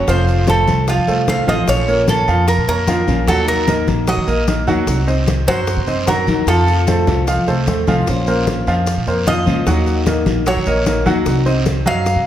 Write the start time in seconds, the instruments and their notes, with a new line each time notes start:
0.07 upright bass F1, steel-string acoustic guitar C3 F3 A3 C4 F4, grand piano F3 F4 F5, cuban tres C5, high bongo, high conga, long guiro, maracas
0.28 high bongo, high conga, maracas
0.47 grand piano A3 A4 C5, cuban tres A4, high bongo, high conga, short guiro, maracas
0.67 upright bass C2, high bongo, high conga, short guiro, maracas
0.87 grand piano F3 F4 F5, cuban tres F4, muted steel-string acoustic guitar stroke, high bongo, high conga, long guiro, maracas
0.97 upright bass F2
1.07 upright bass C2, grand piano A3 A4 C5, high conga, maracas
1.27 steel-string acoustic guitar F3 A3 C4 F4, grand piano A3 A4 C5, cuban tres F5, high bongo, low bongo, high conga, short guiro, maracas
1.47 upright bass A1, grand piano F3 F4 F5, steel-string acoustic guitar F3 A3 C4 F4, cuban tres D#5, high bongo, high conga, short guiro, maracas
1.66 upright bass A#1, steel-string acoustic guitar F3 A#3 C#4 F4, cuban tres C#5, high bongo, high conga, long guiro, maracas
1.88 grand piano A#3 A#4 C#5, high conga, maracas
2.08 cuban tres A4, high bongo, high conga, short guiro, maracas
2.28 upright bass F2, grand piano F3 F4 F5, short guiro, maracas
2.47 cuban tres A#4, muted steel-string acoustic guitar stroke, high bongo, high conga, long guiro, maracas
2.57 upright bass A#2
2.67 upright bass F2, grand piano A#3 A#4 C#5, cuban tres A#4, high conga, maracas
2.87 steel-string acoustic guitar F3 A#3 C#4 F4, grand piano F3 F4 F5, high bongo, low bongo, high conga, short guiro, maracas
3.07 upright bass A#1, steel-string acoustic guitar A#3 C#4 F4, high conga, short guiro, maracas
3.27 upright bass D#2, steel-string acoustic guitar D#3 A#3 D#4 F#4, grand piano F#3 F#4 F#5, cuban tres A4, high bongo, high conga, long guiro, maracas
3.48 cuban tres A#4, high bongo, high conga, maracas
3.67 grand piano A#3 A#4 D#5, high bongo, high conga, short guiro, maracas
3.87 upright bass A#1, high bongo, high conga, short guiro, maracas
4.07 grand piano F#3 F#4 F#5, cuban tres D#5, muted steel-string acoustic guitar stroke, high bongo, high conga, long guiro, maracas
4.17 upright bass D#3
4.27 upright bass A#1, grand piano A#3 A#4 D#5, high conga, maracas
4.47 steel-string acoustic guitar D#3 A#3 D#4 F#4, grand piano A#3 A#4 D#5, high bongo, low bongo, high conga, short guiro, maracas
4.67 upright bass D#2, grand piano F#3 F#4 F#5, steel-string acoustic guitar A#3 D#4 F#4, high bongo, high conga, short guiro, maracas
4.87 upright bass C2, steel-string acoustic guitar C4 D#4 F#4, high bongo, high conga, long guiro, maracas
5.07 grand piano C4 C5 D#5, high conga, maracas
5.27 high bongo, high conga, short guiro, maracas
5.47 upright bass F#2, grand piano F#3 F#4 F#5, cuban tres C5, short guiro, maracas
5.67 muted steel-string acoustic guitar stroke, high bongo, high conga, long guiro, maracas
5.76 upright bass C3
5.86 upright bass F#2, grand piano C4 C5 D#5, high conga, maracas
6.07 grand piano F#3 F#4 F#5, steel-string acoustic guitar C4 D#4 F#4, cuban tres A#4, high bongo, low bongo, high conga, short guiro, maracas
6.27 upright bass D#2, steel-string acoustic guitar D#4 F#4, high conga, short guiro, maracas
6.46 upright bass F2, steel-string acoustic guitar C3 F3 A3 C4 F4, grand piano F3 F4 F5, cuban tres A4, high bongo, high conga, long guiro, maracas
6.67 high bongo, high conga, maracas
6.87 grand piano A3 A4 C5, high bongo, high conga, short guiro, maracas
7.07 upright bass C2, high bongo, high conga, short guiro, maracas
7.27 grand piano F3 F4 F5, muted steel-string acoustic guitar stroke, high bongo, high conga, long guiro, maracas
7.37 upright bass F3
7.47 upright bass C2, grand piano A3 A4 C5, high conga, maracas
7.67 upright bass D#2, steel-string acoustic guitar F3 A3 C4 F4, grand piano A3 A4 C5, high bongo, low bongo, high conga, short guiro, maracas
7.87 upright bass C2, grand piano F3 F4 F5, steel-string acoustic guitar F3 A3 C4 F4, high bongo, high conga, short guiro, maracas
8.07 upright bass A#1, steel-string acoustic guitar F3 A#3 C#4 F4 C5, high bongo, high conga, long guiro, maracas
8.27 grand piano A#3 A#4 C5, high conga, maracas
8.47 high bongo, high conga, short guiro, maracas
8.67 upright bass F2, grand piano F3 F4 F5, short guiro, maracas
8.87 muted steel-string acoustic guitar stroke, high bongo, high conga, long guiro, maracas
8.97 upright bass A#2
9.06 upright bass F2, grand piano A#3 A#4 C5, high conga, maracas
9.27 grand piano F3 F4 F5, steel-string acoustic guitar A#3 C#4 F4 C5, cuban tres D#5, high bongo, low bongo, high conga, short guiro, maracas
9.46 upright bass C#2, steel-string acoustic guitar A#3 C#4 F4 C5, high conga, short guiro, maracas
9.65 upright bass D#2, steel-string acoustic guitar D#3 A#3 D#4 F#4, grand piano F#3 F#4 F#5, high bongo, high conga, long guiro, maracas
9.86 high bongo, high conga, maracas
10.06 grand piano A#3 A#4 D#5, high bongo, high conga, short guiro, maracas
10.26 upright bass A#1, high bongo, high conga, short guiro, maracas
10.46 grand piano F#3 F#4 F#5, cuban tres C#5, muted steel-string acoustic guitar stroke, high bongo, high conga, long guiro, maracas
10.56 upright bass D#3
10.66 upright bass A#1, grand piano A#3 A#4 D#5, high conga, maracas
10.86 steel-string acoustic guitar D#3 A#3 D#4 F#4, grand piano A#3 A#4 D#5, high bongo, low bongo, high conga, short guiro, maracas
11.06 upright bass D#2, grand piano F#3 F#4 F#5, steel-string acoustic guitar A#3 D#4 F#4, high bongo, high conga, short guiro, maracas
11.26 upright bass C2, steel-string acoustic guitar C4 D#4 F#4, high bongo, high conga, long guiro, maracas
11.46 grand piano C4 C5 D#5, high conga, maracas
11.66 high bongo, high conga, short guiro, maracas
11.85 upright bass F#2, grand piano F#3 F#4 D#5, cuban tres F5, short guiro, maracas
12.06 muted steel-string acoustic guitar stroke, high bongo, high conga, long guiro, maracas
12.16 upright bass C3